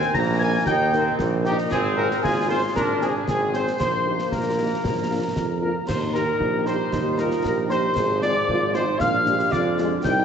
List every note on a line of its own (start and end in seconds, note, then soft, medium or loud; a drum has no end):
0.00 0.11 C4 loud
0.00 0.13 G#5 loud
0.00 snare medium
0.14 0.58 A#1 loud
0.14 0.68 A#3 loud
0.14 0.41 A#5 loud
0.14 0.26 A#5 loud
0.14 0.20 A#6 loud
0.14 concert bass drum medium
0.14 snare medium
0.39 0.50 A#3 medium
0.39 0.50 D#4 medium
0.39 0.50 A#4 medium
0.39 0.52 G#5 loud
0.39 0.65 G#5 loud
0.39 0.64 G#6 loud
0.66 1.10 D#2 loud
0.66 0.92 D#4 loud
0.66 1.15 G5 loud
0.66 1.16 G5 loud
0.66 1.15 G6 loud
0.66 concert bass drum medium
0.66 snare medium
0.93 1.03 A#3 medium
0.93 1.18 C4 loud
0.93 1.03 D#4 medium
0.93 1.03 A#4 medium
0.93 snare medium
1.19 1.62 A#1 loud
1.19 1.46 A#3 medium
1.19 concert bass drum medium
1.19 snare medium
1.44 1.54 A#3 medium
1.44 1.54 D#4 medium
1.44 1.70 D#4 loud
1.44 1.56 G4 loud
1.44 1.57 G4 loud
1.44 1.54 A#4 medium
1.44 1.51 G5 loud
1.44 snare medium
1.58 snare medium
1.70 2.14 G#1 loud
1.70 2.20 C4 loud
1.70 1.83 G#4 loud
1.70 1.95 G#4 loud
1.70 1.77 G#5 loud
1.70 concert bass drum medium
1.70 snare medium
1.70 crash soft
1.96 2.07 C4 medium
1.96 2.07 F4 medium
1.96 2.07 G#4 medium
1.96 2.09 A#4 loud
1.96 2.21 A#4 loud
1.96 2.02 A#5 loud
2.11 snare medium
2.22 2.66 G#1 loud
2.22 2.76 F4 loud
2.22 2.49 G#4 medium
2.22 2.48 G#4 loud
2.22 2.51 G#5 loud
2.22 concert bass drum medium
2.22 snare medium
2.48 2.58 C4 medium
2.48 2.58 F4 medium
2.48 2.58 G#4 medium
2.48 2.61 C5 loud
2.48 2.62 C5 loud
2.48 2.75 C6 loud
2.75 3.19 G#1 medium
2.75 3.23 D4 loud
2.75 2.99 A#4 loud
2.75 2.82 A#5 medium
2.75 concert bass drum medium
2.75 snare medium
3.01 3.11 C4 medium
3.01 3.11 F4 medium
3.01 3.13 G#4 loud
3.01 3.11 G#4 medium
3.01 3.27 G#4 medium
3.01 3.08 G#5 medium
3.01 snare medium
3.27 3.71 G#1 medium
3.27 3.79 C4 medium
3.27 3.52 G#4 medium
3.27 3.52 G#5 medium
3.27 concert bass drum medium
3.27 snare medium
3.53 3.63 C4 medium
3.53 3.63 F4 medium
3.53 3.63 G#4 medium
3.53 3.78 C5 medium
3.53 3.66 C5 loud
3.53 3.60 C6 medium
3.53 snare medium
3.67 snare medium
3.78 4.23 A#1 medium
3.78 5.61 A#3 medium
3.78 4.34 C5 medium
3.78 4.28 C5 medium
3.78 4.28 C6 medium
3.78 concert bass drum medium
3.78 snare medium
3.78 crash soft
4.06 4.15 A#3 medium
4.06 4.15 D#4 medium
4.06 4.16 G4 medium
4.19 snare medium
4.32 4.75 A#1 medium
4.32 5.58 A#4 medium
4.32 5.61 A#4 medium
4.32 5.58 A#5 medium
4.32 concert bass drum medium
4.32 snare medium
4.59 4.68 A#3 medium
4.59 4.68 D#4 medium
4.59 4.68 G4 medium
4.84 5.27 A#1 medium
4.84 concert bass drum medium
4.84 snare medium
5.10 5.20 A#3 medium
5.10 5.20 D4 medium
5.10 5.20 F4 medium
5.36 5.75 F2 medium
5.36 concert bass drum medium
5.36 snare medium
5.61 5.71 A#3 medium
5.61 5.71 D4 medium
5.61 5.71 F4 medium
5.61 5.73 A#4 medium
5.61 5.74 A#4 medium
5.61 5.89 A#5 medium
5.87 6.31 D#2 medium
5.87 7.93 G3 medium
5.87 6.42 D#4 medium
5.87 7.93 D#4 medium
5.87 5.99 C5 medium
5.87 6.01 C5 medium
5.87 6.15 C6 medium
5.87 concert bass drum medium
5.87 snare medium
5.87 crash medium
6.13 6.24 A#3 medium
6.13 6.24 D#4 medium
6.13 6.24 G4 medium
6.13 6.62 A#4 loud
6.13 6.63 A#4 medium
6.13 6.68 A#5 medium
6.13 snare medium
6.40 6.83 A#1 medium
6.40 6.93 G4 medium
6.40 concert bass drum medium
6.65 6.75 A#3 medium
6.65 6.75 D#4 medium
6.65 6.75 G4 medium
6.65 7.15 C5 medium
6.65 7.20 C5 loud
6.65 7.17 C6 medium
6.65 snare medium
6.92 7.36 D#2 medium
6.92 7.20 D#4 medium
6.92 concert bass drum medium
6.92 snare medium
7.18 7.28 A#3 medium
7.18 7.28 D#4 medium
7.18 7.47 F4 medium
7.18 7.27 G4 medium
7.18 7.44 A#4 loud
7.18 7.31 A#4 medium
7.18 7.24 A#5 medium
7.18 snare medium
7.31 snare medium
7.43 7.88 A#1 medium
7.43 7.99 G4 medium
7.43 7.69 A#4 medium
7.43 7.57 A#4 medium
7.43 7.49 A#5 medium
7.43 concert bass drum medium
7.43 snare medium
7.69 7.79 A#3 medium
7.69 7.79 D#4 medium
7.69 7.79 G4 medium
7.69 8.19 C5 loud
7.69 8.23 C5 medium
7.69 8.24 C6 medium
7.69 snare medium
7.96 8.40 G#1 loud
7.96 8.97 F3 medium
7.96 9.01 C4 medium
7.96 8.49 G#4 medium
7.96 concert bass drum medium
7.96 snare medium
7.96 crash soft
8.22 8.31 G#3 medium
8.22 8.32 C4 medium
8.22 8.32 F4 medium
8.22 8.76 D5 loud
8.22 8.71 D5 medium
8.22 8.73 D6 loud
8.22 snare medium
8.48 8.92 G#1 loud
8.48 8.61 F4 medium
8.48 concert bass drum medium
8.74 8.84 G#3 medium
8.74 8.84 C4 medium
8.74 8.87 D#4 medium
8.74 8.84 F4 medium
8.74 9.01 C5 loud
8.74 8.87 C5 loud
8.74 8.80 C6 medium
8.74 snare medium
8.98 9.44 A#1 medium
8.98 10.04 G#3 medium
8.98 10.00 D4 medium
8.98 9.25 D4 medium
8.98 9.53 F5 loud
8.98 9.50 F5 loud
8.98 9.53 F6 loud
8.98 concert bass drum medium
8.98 snare medium
9.26 9.35 G#3 medium
9.26 9.36 D4 medium
9.26 9.36 F4 medium
9.26 9.55 G4 medium
9.26 snare medium
9.39 snare medium
9.52 9.96 F2 loud
9.52 9.80 F4 medium
9.52 9.78 D5 loud
9.52 9.64 D5 medium
9.52 9.78 D6 loud
9.52 concert bass drum medium
9.52 snare medium
9.78 9.88 G#3 medium
9.78 10.06 D4 medium
9.78 9.88 D4 medium
9.78 9.89 F4 medium
9.78 snare medium
10.04 10.25 C2 loud
10.04 10.25 G3 loud
10.04 10.25 D#4 loud
10.04 10.25 D#4 medium
10.04 10.25 D#4 loud
10.04 10.25 G5 loud
10.04 10.25 G6 loud
10.04 concert bass drum medium
10.04 snare medium
10.04 crash soft